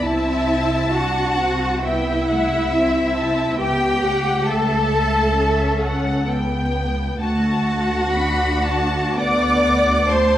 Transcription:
0.03 double bass section C2, viola section C4, cello section E4, violin section E5 A5
0.94 viola section D4, cello section F#4, violin section F#5
1.38 viola section C4
1.83 viola section B3, cello section E4, violin section E5 G5
2.29 viola section A3, violin section F#5
2.73 viola section C4, violin section E5
3.17 violin section A5
3.58 double bass section C#2, viola section B3, cello section G4, violin section G5
4.04 viola section A3, violin section F#5
4.48 viola section A3, cello section A4, violin section E5 A5
5.37 viola section C#4, violin section E5
5.83 violin section F#5
6.28 viola section B3, violin section G5
7.20 double bass section D2, viola section A3, cello section F#4, violin section F#5 A5
8.14 viola section D4, violin section B5
8.65 violin section A5
9.17 viola section B3, cello section D5, violin section F#5 D6
9.64 violin section F#5
10.11 viola section A3, cello section C5, violin section A5 C6

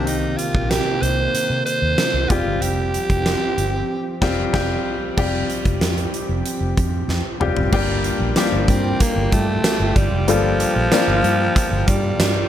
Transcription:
Already playing: fingered electric bass C2, grand piano C3 D#3 A#3 C4 G4, analog synth pad C3 D#3 A#3
0.06 alto saxophone D#4, closed hi-hat
0.38 alto saxophone F4, closed hi-hat
0.55 fingered electric bass A#1, kick
0.70 alto saxophone G4, snare, closed hi-hat
1.02 fingered electric bass C2, alto saxophone C5, closed hi-hat
1.34 muted fingered electric bass stroke, closed hi-hat
1.50 fingered electric bass C3
1.65 alto saxophone C5, closed hi-hat
1.82 fingered electric bass D#2
1.98 snare, closed hi-hat
2.14 fingered electric bass C2
2.29 fingered electric bass F1, analog synth pad F3 C4 G4, grand piano G3 C4 F4 G4, alto saxophone F4, kick, closed hi-hat
2.46 fingered electric bass G1
2.61 fingered electric bass F1, alto saxophone G4, closed hi-hat
2.94 closed hi-hat
3.10 fingered electric bass F1, kick, closed hi-hat
3.26 snare, closed hi-hat
3.58 fingered electric bass G1, closed hi-hat
4.21 fingered electric bass F1, grand piano G3 C4 F4 G4, kick, snare, crash
4.53 fingered electric bass F1, grand piano G3 C4 F4 G4, kick, snare, crash
5.17 fingered electric bass F1, analog synth pad F3 C4 G4, grand piano G3 C4 F4 G4, kick, crash
5.50 closed hi-hat
5.65 fingered electric bass F1, kick, closed hi-hat
5.81 fingered electric bass F2, snare, closed hi-hat
5.98 closed hi-hat
6.14 closed hi-hat
6.29 fingered electric bass F1
6.46 closed hi-hat
6.61 fingered electric bass F1
6.77 fingered electric bass F2, kick, closed hi-hat
7.08 fingered electric bass F2, snare
7.40 fingered electric bass F1, grand piano G3 C4 F4 G4, mid tom
7.56 fingered electric bass F1, floor tom
7.72 fingered electric bass G1, grand piano G2 G3 A#3 D4 F4 G4, analog synth pad F4 G4 G5, kick, crash
8.04 closed hi-hat
8.20 fingered electric bass A#1
8.36 alto saxophone F3, grand piano G3 A#3 D4 F4 G4, snare, closed hi-hat, tambourine
8.52 fingered electric bass G1
8.68 fingered electric bass G2, alto saxophone C4, kick, closed hi-hat
9.00 alto saxophone A#3, kick, closed hi-hat
9.16 fingered electric bass G1
9.32 fingered electric bass G2, alto saxophone A3, kick, closed hi-hat
9.64 snare, closed hi-hat, tambourine
9.80 fingered electric bass G1
9.96 fingered electric bass G1, alto saxophone G3, kick, closed hi-hat
10.12 fingered electric bass F1
10.27 fingered electric bass G1, grand piano G2 G3 A#3 D4 F4 A4, alto saxophone F3, closed hi-hat
10.60 closed hi-hat
10.76 fingered electric bass A#1
10.92 grand piano G3 A#3 D4 F4 A#4, snare, closed hi-hat, tambourine
11.08 fingered electric bass G1
11.24 fingered electric bass G2, closed hi-hat
11.56 kick, closed hi-hat
11.71 fingered electric bass G1
11.88 fingered electric bass G2, alto saxophone G3, kick, closed hi-hat
12.19 fingered electric bass G2, snare, closed hi-hat, tambourine

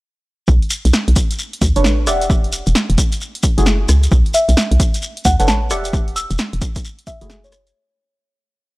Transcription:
0.48 fm bass B1, kick, shekere
0.62 closed hi-hat
0.70 open hi-hat, shekere
0.85 fm bass B1, closed hi-hat, shekere
0.93 snare, shekere
1.08 fm bass B1, closed hi-hat
1.16 kick, open hi-hat, shekere
1.31 closed hi-hat, shekere
1.39 shekere
1.53 closed hi-hat
1.62 fm bass D2, kick, open hi-hat, shekere
1.76 fm bass F#1, synth stab D4 A4 B4 C#5, closed hi-hat, shekere
1.84 fm bass A1, snare, shekere
2.07 fm bass E1, synth stab G4 D5 E5 F#5, cross-stick, open hi-hat, shekere
2.21 closed hi-hat, shekere
2.30 kick, shekere
2.44 closed hi-hat
2.52 open hi-hat, shekere
2.66 fm bass E1, closed hi-hat, shekere
2.75 snare, shekere
2.90 fm bass E1, closed hi-hat
2.98 kick, open hi-hat, shekere
3.12 closed hi-hat, shekere
3.21 shekere
3.35 closed hi-hat
3.43 kick, open hi-hat, shekere
3.58 fm bass F#1, synth stab A3 E4 F#4 G#4, closed hi-hat, shekere
3.66 snare, shekere
3.89 fm bass C#2, cross-stick, open hi-hat, shekere
4.03 closed hi-hat, shekere
4.11 fm bass B1, kick, shekere
4.26 closed hi-hat
4.34 marimba E5, open hi-hat, shekere
4.49 fm bass B1, closed hi-hat, shekere
4.57 snare, shekere
4.71 fm bass B1, closed hi-hat
4.80 kick, open hi-hat, shekere
4.94 closed hi-hat, shekere
5.02 shekere
5.17 closed hi-hat
5.25 fm bass D2, marimba F#5, kick, open hi-hat, shekere
5.39 fm bass F#1, synth stab D4 A4 B4 C#5, marimba F#5, closed hi-hat, shekere
5.48 fm bass A1, marimba A5, snare, shekere
5.70 fm bass E1, synth stab G4 D5 E5 F#5, cross-stick, open hi-hat, shekere
5.84 closed hi-hat, shekere
5.93 kick, shekere
6.08 closed hi-hat
6.16 marimba E6, open hi-hat, shekere
6.31 fm bass E1, closed hi-hat, shekere
6.38 snare, shekere
6.53 fm bass E1, closed hi-hat
6.61 kick, open hi-hat, shekere
6.75 kick, closed hi-hat, shekere
6.85 shekere
6.99 closed hi-hat
7.07 marimba E5, kick, open hi-hat, shekere
7.21 fm bass F#1, synth stab A3 E4 F#4 G#4, closed hi-hat, shekere
7.30 snare, shekere
7.44 marimba C#5, closed hi-hat, shekere
7.52 cross-stick, open hi-hat, shekere
7.67 closed hi-hat, shekere

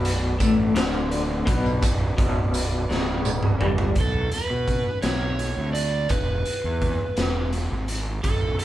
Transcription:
Already playing: fingered electric bass B0, clean electric guitar B1 B2, transistor combo organ F#4 B4 D5
0.05 closed hi-hat, tambourine
0.38 fingered electric bass A1, clean electric guitar A2 A3, kick, closed hi-hat, tambourine
0.74 fingered electric bass D1, clean electric guitar D2 D3, snare, closed hi-hat
0.94 tambourine
1.11 closed hi-hat
1.46 fingered electric bass B1, clean electric guitar B2 B3, kick, closed hi-hat
1.66 tambourine
1.82 fingered electric bass B0, clean electric guitar B1, kick, closed hi-hat, tambourine
2.17 fingered electric bass B0, clean electric guitar B1 B2, kick, closed hi-hat
2.54 closed hi-hat, tambourine
2.71 tambourine
2.88 fingered electric bass C#1, clean electric guitar C#2 C#3, snare, tambourine
3.25 high tom, tambourine
3.43 mid tom
3.59 fingered electric bass G1, clean electric guitar G2 G3, mid tom
3.78 floor tom
3.95 fingered electric bass B1, kick, closed hi-hat
4.00 electric slide guitar A4
4.31 electric slide guitar B4, closed hi-hat
4.50 fingered electric bass B2
4.67 kick, closed hi-hat
5.02 fingered electric bass B1, electric slide guitar C#5, snare, closed hi-hat
5.39 closed hi-hat
5.57 fingered electric bass D2
5.73 electric slide guitar D5, closed hi-hat
6.09 fingered electric bass E1, electric slide guitar B4, kick, closed hi-hat
6.45 closed hi-hat
6.64 fingered electric bass E2
6.81 kick, closed hi-hat
7.17 fingered electric bass E1, snare, closed hi-hat
7.52 closed hi-hat
7.71 fingered electric bass G#1
7.88 closed hi-hat
8.23 fingered electric bass B0, electric slide guitar A4, kick, closed hi-hat
8.59 electric slide guitar B4, closed hi-hat

